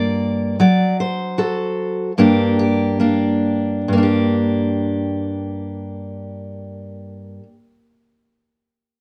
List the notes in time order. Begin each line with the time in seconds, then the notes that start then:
Already playing: G2 A#3 F4 A#4 D5
0.60 F#3 D5
1.00 C5
1.38 F#4 A4
2.18 G2 A#3 D4 G4
2.59 G4
3.00 A#3 D4
3.88 G2
3.93 A#3
3.98 D4
4.03 G4